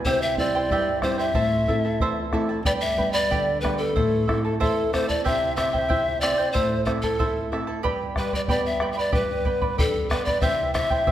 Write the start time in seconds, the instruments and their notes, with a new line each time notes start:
0.05 nylon-string guitar C3, charango E4 G4 C5 E5 G5, pan flute C5, bombo low
0.22 pan flute E5
0.37 nylon-string guitar G3 C4 E4, charango E4 C5 E5, pan flute D5, bombo low
0.41 charango G5
0.55 charango E4 C5 G5
0.70 nylon-string guitar G2, charango E4 G4 C5 E5 G5, bombo low
1.02 nylon-string guitar G3 C4 E4, charango E4 C5 E5 G5, pan flute C5, bombo rim, bombo low
1.18 charango E4 C5 G5, pan flute E5
1.34 nylon-string guitar A2, charango E4 A4 C5 E5 A5, bombo low
1.67 nylon-string guitar A3 C4 E4, charango E4 A4 E5 A5, bombo low
1.85 charango E4 A4 A5
2.00 nylon-string guitar E2, charango E4 A4 C5 E5 A5, bombo low
2.32 nylon-string guitar A3 C4 E4, charango E4 A4 E5 A5, bombo rim, bombo low
2.49 charango E4 A4 A5
2.65 nylon-string guitar G2, charango G4 B4 D5 G5 B5, pan flute D5, bombo low
2.81 pan flute E5
2.97 nylon-string guitar G3 B3 D4, charango B4 D5 G5 B5, bombo low
3.13 charango B4 D5 B5, pan flute D5
3.31 nylon-string guitar D3, charango G4 B4 D5 G5 B5, bombo low
3.61 nylon-string guitar G3 B3 D4, pan flute B4, charango B4 D5 G5 B5, bombo rim, bombo low
3.78 pan flute A4, charango B4 D5 B5
3.95 nylon-string guitar A2, charango E4 A4 C5 E5 A5, bombo low
4.28 nylon-string guitar A3 C4 E4, charango E4 A4 E5 A5, bombo rim, bombo low
4.45 charango E4 A4 A5
4.60 nylon-string guitar E2, charango E4 A4 C5 E5 A5, pan flute A4, bombo low
4.93 nylon-string guitar A3 C4 E4, charango E4 A4 E5 A5, pan flute C5, bombo rim, bombo low
5.09 charango E4 A4 A5, pan flute D5, bombo low
5.24 nylon-string guitar C3, charango E4 G4 C5 E5 G5, pan flute E5, bombo low
5.56 nylon-string guitar C4, charango E4 C5 E5 G5, pan flute E5, bombo rim, bombo low
5.73 charango E4 C5 G5, bombo low
5.88 charango E4 G4 C5 E5 G5, nylon-string guitar E4, bombo low
6.21 nylon-string guitar C4, charango E4 C5 E5 G5, pan flute D5, bombo rim
6.38 charango E4 C5 G5
6.52 nylon-string guitar A2, charango E4 A4 C5 E5 A5, pan flute C5, bombo low
6.85 nylon-string guitar C4, charango E4 A4 E5 A5, pan flute C5, bombo rim, bombo low
7.02 charango E4 A4 A5, pan flute A4, bombo low
7.19 charango E4 A4 C5 E5 A5, nylon-string guitar E4, bombo low
7.52 nylon-string guitar C4, charango E4 A4 E5 A5, bombo rim
7.67 charango E4 A4 A5
7.83 nylon-string guitar G2, charango G4 B4 D5 G5 B5, bombo low
8.16 nylon-string guitar G3, charango B4 D5 G5 B5, pan flute B4, bombo rim, bombo low
8.33 charango B4 D5 B5, pan flute D5, bombo low
8.48 nylon-string guitar B3, charango G4 B4 D5 G5 B5, pan flute D5, bombo low
8.66 pan flute E5
8.80 nylon-string guitar G3, charango B4 D5 G5 B5, bombo rim
8.92 pan flute E5
8.97 charango B4 D5 B5, pan flute D5
9.12 nylon-string guitar G2, charango G4 B4 D5 G5 B5, pan flute B4, bombo low
9.45 nylon-string guitar B3, charango B4 D5 G5 B5, bombo low
9.62 charango B4 D5 B5, bombo low
9.78 nylon-string guitar D4, charango G4 B4 D5 G5 B5, pan flute A4, bombo low
10.10 nylon-string guitar B3, pan flute B4, charango B4 D5 G5 B5, bombo rim, bombo low
10.25 charango B4 D5 B5, pan flute D5, bombo low
10.41 nylon-string guitar C3, charango E4 G4 C5 E5 G5, pan flute E5, bombo low
10.74 nylon-string guitar E4, charango E4 C5 E5 G5, pan flute E5, bombo rim, bombo low
10.90 charango E4 C5 G5, bombo low
11.06 charango E4 G4 C5 E5 G5, nylon-string guitar G4, bombo low